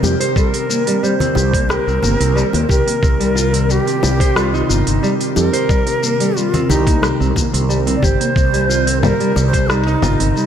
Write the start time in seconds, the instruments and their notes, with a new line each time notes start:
Already playing: ambient pad C3 D#3 C4 A#4
0.02 fretless electric bass F2, nylon-string guitar G4, high bongo, high conga, shaker
0.20 nylon-string guitar C5, open hi-hat, shaker
0.36 nylon-string guitar G3, native american-style wooden flute A4, kick, shaker
0.49 native american-style wooden flute A#4
0.54 nylon-string guitar C4, open hi-hat, shaker
0.70 nylon-string guitar A#3, shaker
0.87 nylon-string guitar G3, open hi-hat, shaker
1.03 nylon-string guitar G3, native american-style wooden flute C5, shaker
1.20 nylon-string guitar C4, open hi-hat, low conga, shaker
1.35 fretless electric bass C2, nylon-string guitar G4, high bongo, low conga, shaker
1.53 nylon-string guitar A#3, kick, open hi-hat, shaker
1.69 nylon-string guitar G4, native american-style wooden flute A#4, cross-stick, high conga, shaker
1.87 fretless electric bass C2, nylon-string guitar C4, shaker
2.02 fretless electric bass G1, nylon-string guitar A#3, high bongo, low conga, shaker
2.20 fretless electric bass C2, nylon-string guitar C4, open hi-hat, shaker
2.36 nylon-string guitar G3, shaker
2.53 fretless electric bass D#2, nylon-string guitar C4, open hi-hat, high bongo, shaker
2.69 fretless electric bass C2, nylon-string guitar G4, native american-style wooden flute A#4, kick, high conga, shaker
2.86 nylon-string guitar A#3, open hi-hat, shaker
3.02 fretless electric bass C2, nylon-string guitar C4, kick, shaker
3.20 nylon-string guitar G3, open hi-hat, shaker
3.35 nylon-string guitar F4, shaker
3.53 nylon-string guitar C4, open hi-hat, shaker
3.60 ambient pad G4
3.69 nylon-string guitar G3, native american-style wooden flute G4, shaker
3.86 nylon-string guitar C4, open hi-hat, shaker
4.03 fretless electric bass C2, nylon-string guitar G3, high bongo, shaker
4.20 nylon-string guitar C5, kick, open hi-hat, shaker
4.36 nylon-string guitar G3, native american-style wooden flute F4, cross-stick, shaker
4.54 nylon-string guitar D#4, shaker
4.69 fretless electric bass G1, native american-style wooden flute D#4, nylon-string guitar F4, shaker
4.87 fretless electric bass G1, nylon-string guitar C4, open hi-hat, shaker
5.03 nylon-string guitar G3, shaker
5.20 nylon-string guitar F4, open hi-hat, shaker
5.36 fretless electric bass F2, nylon-string guitar G4, native american-style wooden flute A4, high bongo, high conga, shaker
5.48 native american-style wooden flute A#4
5.53 nylon-string guitar C5, open hi-hat, shaker
5.69 nylon-string guitar G3, kick, shaker
5.87 nylon-string guitar C4, open hi-hat, high bongo, shaker
6.02 nylon-string guitar A#3, shaker
6.20 nylon-string guitar G3, open hi-hat, shaker
6.36 nylon-string guitar G3, native american-style wooden flute F4, shaker
6.53 nylon-string guitar C4, open hi-hat, low conga, shaker
6.69 fretless electric bass C2, native american-style wooden flute D#4, nylon-string guitar G4, high bongo, low conga, shaker
6.87 nylon-string guitar A#3, kick, open hi-hat, shaker
7.02 nylon-string guitar G4, cross-stick, high conga, shaker
7.20 fretless electric bass C2, nylon-string guitar C4, shaker
7.36 nylon-string guitar A#3, kick, high bongo, low conga, shaker
7.53 fretless electric bass C2, nylon-string guitar C4, open hi-hat, shaker
7.69 nylon-string guitar G3, shaker
7.87 nylon-string guitar C4, open hi-hat, high bongo, shaker
7.96 native american-style wooden flute D5
8.02 fretless electric bass G1, nylon-string guitar G4, native american-style wooden flute C5, kick, high conga, shaker
8.20 nylon-string guitar A#3, open hi-hat, shaker
8.36 fretless electric bass C2, nylon-string guitar C4, kick, shaker
8.53 nylon-string guitar G3, open hi-hat, shaker
8.69 nylon-string guitar F4, shaker
8.86 nylon-string guitar C4, open hi-hat, shaker
9.02 nylon-string guitar G3, native american-style wooden flute A#4, low conga, shaker
9.20 nylon-string guitar G3, open hi-hat, shaker
9.36 fretless electric bass C2, nylon-string guitar G3, high bongo, shaker
9.48 native american-style wooden flute C5
9.53 nylon-string guitar C5, kick, open hi-hat, shaker
9.69 nylon-string guitar G3, native american-style wooden flute D#4, cross-stick, shaker
9.87 nylon-string guitar D#4, shaker
10.02 fretless electric bass G1, nylon-string guitar F4, low conga, shaker
10.19 fretless electric bass G1, nylon-string guitar C4, open hi-hat, shaker
10.36 nylon-string guitar G3, shaker